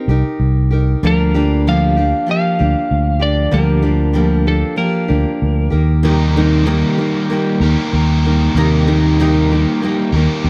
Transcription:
0.08 C2 D#4 G4 A#4
0.40 C2
0.71 D#4 G4 A#4
1.03 D2 D3 F3 G3 A#3 D4 G4 A#4
1.34 D3 F3 G3 A#3 D4 G4
1.67 D3 F3 G3 A#3 D4 G4 F5
1.96 F3 A#3 D4 G4
2.27 F3 A#3 D4 G4
2.31 F5
2.59 D2 F3 A#3 D4 G4
2.91 D2
3.19 F3 A#3 D4 G4 D5
3.51 D2 D3 F3 G3 A#3 D4 G4 A#4
3.82 D3 F3 G3 A#3 D4 G4
4.13 D3 F3 G3 A#3 D4 G4
4.47 F3 A#3 D4 G4 A4
4.76 F3 A#3 D4 G4 A#4
5.08 D2 F3 A#3 D4 G4
5.42 D2
5.70 D#2 A#3 D#4 G4 A#4
6.03 C3 D#3 G3 A#3 D#4 G4 A#4
6.36 C3 D#3 A#3 D#4 G4 A#4
6.66 C3 D#3 A#3 D#4 G4 A#4
6.98 A#3 D#4 G4 A#4
7.30 A#3 D#4 G4 A#4
7.60 D#2 G3 A#3 D#4 G4 A#4
7.64 D#3
7.93 D#2 D#3 G3 A#3 G4 A#4
8.25 A#3 D#4 G4 A#4
8.55 D#2 C3 D#3 G3 A#3 D#4 G4 A#4
8.87 C3 D#3 A#3 D#4 G4 A#4
9.20 C3 D#3 A#3 D#4 G4 A#4
9.52 A#3 D#4 G4 A#4
9.82 A#3 D#4 G4 A#4
10.13 D#2 D#3 G3 G4 A#4
10.17 A#3 D#4
10.44 E2 D#3 G3 A#3

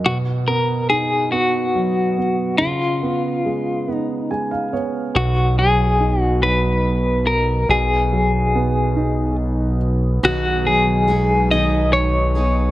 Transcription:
0.06 B2 F#4
0.48 B3 A#4
0.90 D#4 G#4
1.32 B3 F#4
1.75 F#3
2.18 B3
2.58 C#3 F4
3.03 B3
3.45 G#3
3.88 B3
3.94 D#4
4.31 G#3 G#5
4.51 F5
4.73 B3 C#5
5.15 B1 B2 F#4
5.58 F#3 G#4
6.00 D#4
6.21 F#4
6.42 F#3 B4
7.27 A#4
7.69 B1 B2 G#4
8.12 F#3
8.55 B3
8.96 D#4
10.23 B1 B2 D#3 F#3 B3 D#4 F#4 G#4
10.65 F#3 G#4
11.08 F#3 G#3 B3 D#4 G#4
11.51 B2 D#3 F#3 B3 D#4 G#4 D#5
11.93 C#5
12.35 F#3 B3 D#4 G#4

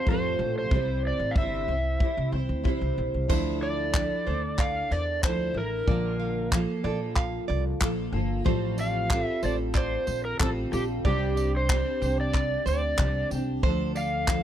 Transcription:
0.06 F2 A2 F3 G3 C4 F4 A4, kick
0.11 C5
0.39 A#1
0.58 C5
0.71 C2 C3 G3 C4 E4 C5, kick
1.07 D5
1.19 A1
1.31 F5
1.36 G1 C3 G3 C4 E4 C5 E5, kick
1.68 C2 C4 E4 C5
2.00 G3 C4 E4 C5, kick
2.17 C3
2.32 C2 C4 E4 C5
2.49 D2
2.64 C3 G3 C4 E4 C5, kick
2.81 C2
2.98 A#1
3.14 C2
3.28 D2 D3 F3 D4 E4 A4 C5, kick, crash
3.62 D5
3.93 F3 D4 E4 A4, kick, clap
4.27 D2 D4 A4 C5
4.58 D5 F5, kick, clap
4.91 E2 C5 D5
5.23 D2 F3 D4 E4 A4 C5, kick, clap
5.54 A1 D4 E4 A#4
5.87 A#1 A#2 D3 F3 A#3 F4 D5, kick
6.20 F5
6.51 F3 A#3 F4 A4, kick, clap
6.83 A#1 F3 A#3 F4 A4 D5
7.16 F5, kick, clap
7.48 C2 D5
7.80 A#1 F3 A#3 F4 A4, kick, clap
8.12 G1 F3 A#3 F4 A4
8.44 A1 A2 F3 G3 C4 F4 A4 C5, kick
8.78 D5 F5, tambourine
9.10 G3 C4 F4 A4, kick, clap
9.22 E5
9.43 A1 G3 C4 F4 A4 C5 D5, tambourine
9.75 C5 D5, kick, clap
10.07 A#1 C5, tambourine
10.25 A#4
10.40 A1 G3 C4 F4 A4, kick, clap
10.71 A#1 G3 C4 F4 G4 A4, tambourine
11.05 C2 C3 G3 C4 D4 G4 D5, kick
11.37 D5, tambourine
11.57 C5
11.69 G3 C4 D4 G4, kick, clap
12.02 C2 C4 D4 G4 C5, tambourine
12.21 D5
12.34 D5, kick, clap
12.66 D2 C5 D5, tambourine
12.98 C2 G3 C4 D4 G4, kick, clap
13.31 C2 C4 D4 G4, tambourine
13.63 D2 D3 F3 D4 A4 C5, kick
13.95 D5 F5, tambourine
14.28 F3 D4 A4, kick, clap

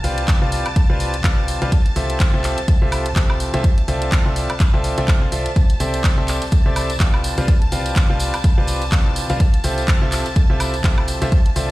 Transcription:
Already playing: A5
0.04 C2 C4 F4 G4 B4 D5 F5, open hi-hat
0.18 closed hi-hat
0.28 kick, clap, closed hi-hat
0.42 C2 C4 F4 G4 B4 D5 F5
0.52 open hi-hat
0.66 closed hi-hat, high woodblock
0.76 kick, closed hi-hat
0.90 C2 C4 F4 G4 B4 D5 F5
1.00 open hi-hat
1.14 closed hi-hat
1.24 C2 C4 F4 G4 B4 D5 F5, kick, clap, closed hi-hat
1.48 open hi-hat
1.62 C2 C4 F4 G4 B4 D5 F5, closed hi-hat
1.72 kick, closed hi-hat
1.86 closed hi-hat
1.96 C2 C4 F4 G4 A4 C5 E5, open hi-hat
2.10 closed hi-hat
2.20 kick, clap, closed hi-hat
2.34 C2 C4 F4 G4 A4 C5 E5
2.44 clap, open hi-hat
2.58 closed hi-hat
2.68 kick, closed hi-hat
2.82 C2 C4 F4 G4 A4 C5 E5
2.92 open hi-hat, high woodblock
3.06 closed hi-hat
3.16 C2 C4 F4 G4 A4 C5 E5, kick, clap, closed hi-hat
3.30 high woodblock
3.40 open hi-hat
3.54 C2 C4 F4 G4 A4 C5 E5, closed hi-hat
3.64 kick, closed hi-hat
3.78 closed hi-hat
3.88 C2 C4 F4 A4 C5 D5 E5, open hi-hat
4.02 closed hi-hat
4.12 kick, clap, closed hi-hat
4.26 C2 C4 F4 A4 C5 D5 E5
4.36 open hi-hat
4.50 closed hi-hat, high woodblock
4.60 kick, clap, closed hi-hat
4.74 C2 C4 F4 A4 C5 D5 E5
4.84 open hi-hat
4.98 C2 C4 F4 A4 C5 D5 E5, closed hi-hat
5.08 kick, clap, closed hi-hat
5.22 C2 C4 F4 A4 C5 D5 F5
5.32 C2 F4 A4 C5 D5 E5, open hi-hat
5.46 closed hi-hat
5.56 A5, kick, closed hi-hat, tambourine
5.70 closed hi-hat
5.80 C2 C4 G4 A4 C5 D5 E5, open hi-hat, tambourine
5.94 closed hi-hat, tambourine
6.04 kick, clap, closed hi-hat, tambourine
6.18 C2 C4 G4 A4 C5 D5 E5
6.28 clap, open hi-hat, tambourine
6.42 closed hi-hat, tambourine
6.51 kick, closed hi-hat, tambourine
6.66 C2 C4 G4 A4 C5 D5 E5
6.76 open hi-hat, tambourine, high woodblock
6.90 closed hi-hat, tambourine
7.00 C2 C4 F4 G4 B4 D5 F5, kick, clap, closed hi-hat
7.14 high woodblock
7.24 open hi-hat, tambourine
7.38 C2 C4 F4 G4 B4 D5 F5, closed hi-hat, tambourine
7.48 kick, closed hi-hat, tambourine
7.62 closed hi-hat
7.72 C2 C4 F4 G4 B4 D5 F5, open hi-hat, tambourine
7.86 closed hi-hat, tambourine
7.96 kick, clap, closed hi-hat
8.10 C2 C4 F4 G4 B4 D5 F5
8.19 open hi-hat, tambourine
8.34 closed hi-hat, tambourine, high woodblock
8.44 kick, closed hi-hat, tambourine
8.58 C2 C4 F4 G4 B4 D5 F5
8.67 open hi-hat, tambourine
8.81 closed hi-hat, tambourine
8.92 C2 C4 F4 G4 B4 D5 F5, kick, clap, closed hi-hat
9.16 open hi-hat, tambourine
9.29 C2 C4 F4 G4 B4 D5 F5, closed hi-hat, tambourine
9.40 kick, closed hi-hat, tambourine
9.54 closed hi-hat
9.64 C2 C4 F4 G4 A4 C5 E5, open hi-hat, tambourine
9.78 closed hi-hat, tambourine
9.88 kick, clap, closed hi-hat
10.02 C2 C4 F4 G4 A4 C5 E5
10.12 clap, open hi-hat, tambourine
10.26 closed hi-hat, tambourine
10.36 kick, closed hi-hat
10.50 C2 C4 F4 G4 A4 C5 E5
10.60 open hi-hat, tambourine, high woodblock
10.74 closed hi-hat, tambourine
10.84 C2 C4 F4 G4 A4 C5 E5, kick, clap, closed hi-hat, tambourine
10.98 high woodblock
11.08 open hi-hat, tambourine
11.21 C2 C4 F4 G4 A4 C5 E5, closed hi-hat, tambourine
11.32 kick, closed hi-hat, tambourine
11.46 closed hi-hat
11.56 C2 C4 F4 A4 C5 D5 E5, open hi-hat, tambourine

